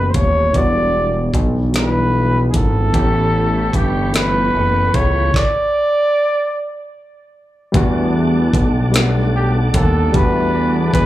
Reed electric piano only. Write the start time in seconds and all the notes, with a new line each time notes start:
Already playing: E3 A3 B3 C#4 G4
0.52 E3 G3 B3 D4
0.57 F#4
1.72 E3 G3 B3 D4
1.78 E4
2.92 E3 A3 B3 C#4
2.97 G4
4.12 E3 A3 B3 C#4
4.17 E4
7.72 G3 A3 B3 D4
7.77 F#4
8.92 G3 A3 B3
8.96 D4 F#5
10.12 G3 A3 B3 D4
10.17 F#4